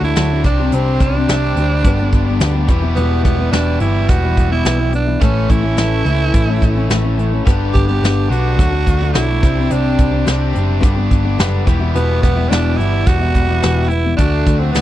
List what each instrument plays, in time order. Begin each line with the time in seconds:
Already playing: picked electric bass D2, overdriven electric guitar D3 F#3 A3 D4 F#4
0.03 steel-string acoustic guitar A3 D4 F#4, tenor saxophone E4
0.16 picked electric bass D2, steel-string acoustic guitar D3 F#3 A3 D4 F#4, snare, closed hi-hat
0.32 steel-string acoustic guitar A3 D4 F#4
0.42 picked electric bass C2, overdriven electric guitar C3, steel-string acoustic guitar G3 C4, tenor saxophone D4, kick, closed hi-hat
0.47 steel-string acoustic guitar D4 G4
0.59 steel-string acoustic guitar C4 D4 G4
0.72 picked electric bass C2, steel-string acoustic guitar C3 G3 C4 D4 G4, tenor saxophone C4, closed hi-hat
1.00 picked electric bass C2, tenor saxophone D4, kick, closed hi-hat
1.15 steel-string acoustic guitar C4 D4 G4
1.28 picked electric bass C2, steel-string acoustic guitar C3 G3 C4 D4 G4, snare, closed hi-hat
1.56 picked electric bass D2, steel-string acoustic guitar G3 C4 D4 G4, closed hi-hat
1.84 picked electric bass G1, steel-string acoustic guitar G2 D3 G3 B3 D4 G4, kick, closed hi-hat
2.00 steel-string acoustic guitar G3 B3 D4 G4
2.12 picked electric bass G1, kick, closed hi-hat
2.27 steel-string acoustic guitar G3 B3 D4 G4
2.40 picked electric bass D2, steel-string acoustic guitar G2 D3 G3 B3 D4 G4, snare, closed hi-hat
2.54 steel-string acoustic guitar G3 B3 D4 G4
2.68 picked electric bass E1, overdriven electric guitar E2 B2 G4, steel-string acoustic guitar E3 G3 B3 E4, kick, closed hi-hat
2.82 steel-string acoustic guitar E3 G3 B3 E4
2.96 picked electric bass E1, steel-string acoustic guitar E2 B2 E3 G3 B3 E4, tenor saxophone B3, closed hi-hat
3.24 picked electric bass E1, tenor saxophone B3, kick, closed hi-hat
3.39 steel-string acoustic guitar E3 G3 B3 E4
3.52 picked electric bass E1, steel-string acoustic guitar E2 B2 E3 G3 B3 E4, tenor saxophone D4, overdriven electric guitar G4, snare, closed hi-hat
3.80 picked electric bass G1, steel-string acoustic guitar E3 G3 B3 E4, tenor saxophone E4, closed hi-hat
4.08 picked electric bass E1, tenor saxophone F#4, kick, closed hi-hat
4.23 steel-string acoustic guitar E3 G3 B3 E4
4.37 picked electric bass E1, kick, closed hi-hat
4.50 steel-string acoustic guitar E3 G3 B3 E4, tenor saxophone E4
4.64 picked electric bass B1, steel-string acoustic guitar E2 B2 E3 G3 B3 E4, snare, closed hi-hat
4.78 steel-string acoustic guitar E3 G3 B3 E4
4.92 steel-string acoustic guitar E3 G3 B3 E4, tenor saxophone D4, closed hi-hat
5.06 steel-string acoustic guitar E3 G3 B3 E4
5.20 picked electric bass A1, steel-string acoustic guitar A2 E3 A3 C#4 E4, tenor saxophone C#4, overdriven electric guitar A4, kick, closed hi-hat
5.50 picked electric bass A1, tenor saxophone E4, kick, closed hi-hat
5.63 steel-string acoustic guitar A3 C#4 E4
5.76 picked electric bass A1, steel-string acoustic guitar A2 E3 A3 C#4 E4, snare, closed hi-hat
6.04 picked electric bass C#2, steel-string acoustic guitar E3 A3 C#4 E4, overdriven electric guitar A4, closed hi-hat
6.09 overdriven electric guitar A2
6.34 picked electric bass A1, kick, closed hi-hat
6.47 steel-string acoustic guitar A3 C#4 E4
6.62 picked electric bass A1, kick, closed hi-hat
6.75 steel-string acoustic guitar A3 C#4 E4
6.90 picked electric bass A1, steel-string acoustic guitar A2 E3 A3 C#4 E4, snare, closed hi-hat
7.03 steel-string acoustic guitar A3 C#4 E4
7.17 steel-string acoustic guitar E3 A3 C#4 E4, closed hi-hat
7.32 steel-string acoustic guitar A3 C#4 E4
7.46 picked electric bass G1, steel-string acoustic guitar G2 D3 G3 B3 D4 G4, kick, closed hi-hat
7.74 picked electric bass G1, tenor saxophone G4, kick, closed hi-hat
7.88 steel-string acoustic guitar G3 B3 D4 G4, tenor saxophone G4
8.02 picked electric bass G1, steel-string acoustic guitar G2 D3 G3 B3 D4 G4, snare, closed hi-hat
8.30 picked electric bass B1, overdriven electric guitar G2 D3, steel-string acoustic guitar G3 B3 D4 G4, tenor saxophone F#4, closed hi-hat
8.57 picked electric bass D2, steel-string acoustic guitar D3 F#3 A3 D4 F#4, kick, closed hi-hat
8.70 steel-string acoustic guitar A3 D4 F#4
8.87 picked electric bass D2, kick, closed hi-hat
9.00 steel-string acoustic guitar A3 D4 F#4
9.13 picked electric bass B1, steel-string acoustic guitar D3 F#3 A3 D4 F#4, tenor saxophone E4, snare, closed hi-hat
9.27 steel-string acoustic guitar A3 D4 F#4
9.40 picked electric bass C2, overdriven electric guitar C3, steel-string acoustic guitar G3 C4 D4 G4, kick, closed hi-hat
9.55 steel-string acoustic guitar C4 D4 G4
9.69 picked electric bass C2, steel-string acoustic guitar C3 G3 C4 D4 G4, tenor saxophone D4, closed hi-hat
9.98 picked electric bass C2, kick, closed hi-hat
10.11 steel-string acoustic guitar C4 D4 G4
10.25 picked electric bass C2, steel-string acoustic guitar C3 G3 C4 D4 G4, snare, closed hi-hat
10.30 overdriven electric guitar G4
10.53 picked electric bass F#1, steel-string acoustic guitar G3 C4 D4 G4, closed hi-hat
10.80 picked electric bass G1, steel-string acoustic guitar G2 D3 G3 B3 D4 G4, kick, closed hi-hat
10.94 steel-string acoustic guitar G3 B3 D4 G4
11.11 picked electric bass G1, kick, closed hi-hat
11.24 steel-string acoustic guitar G3 B3 D4 G4
11.38 picked electric bass F#1, steel-string acoustic guitar G2 D3 G3 B3 D4 G4, snare, closed hi-hat
11.66 picked electric bass E1, overdriven electric guitar E2 B2, steel-string acoustic guitar E3 G3 B3 E4, kick, closed hi-hat
11.70 overdriven electric guitar G4
11.79 steel-string acoustic guitar E3 G3 B3 E4
11.94 picked electric bass E1, steel-string acoustic guitar E2 B2 E3 G3 B3 E4, tenor saxophone B3, closed hi-hat
12.23 picked electric bass E1, tenor saxophone B3, kick, closed hi-hat
12.36 steel-string acoustic guitar E3 G3 B3 E4
12.49 picked electric bass E1, steel-string acoustic guitar E2 B2 E3 G3 B3 E4, tenor saxophone D4, overdriven electric guitar G4, snare, closed hi-hat
12.77 picked electric bass G1, steel-string acoustic guitar E3 G3 B3, tenor saxophone E4, closed hi-hat
12.81 steel-string acoustic guitar E4
13.06 picked electric bass E1, tenor saxophone F#4, kick, closed hi-hat
13.20 steel-string acoustic guitar E3 G3 B3 E4
13.34 picked electric bass E1, kick, closed hi-hat
13.49 steel-string acoustic guitar E3 G3 B3 E4
13.62 picked electric bass E1, steel-string acoustic guitar E2 B2 E3 G3 B3 E4, snare, closed hi-hat
13.89 steel-string acoustic guitar E3 G3 B3 E4, tenor saxophone E4, closed hi-hat
14.04 steel-string acoustic guitar E3 G3 B3 E4
14.17 picked electric bass D2, steel-string acoustic guitar D3 A3 D4 F#4, tenor saxophone D4, kick, closed hi-hat
14.46 picked electric bass D2, kick, closed hi-hat
14.59 steel-string acoustic guitar A3 D4 F#4, tenor saxophone C4
14.72 picked electric bass D2, steel-string acoustic guitar D3 A3 D4, tenor saxophone B3, snare, closed hi-hat
14.76 steel-string acoustic guitar F#4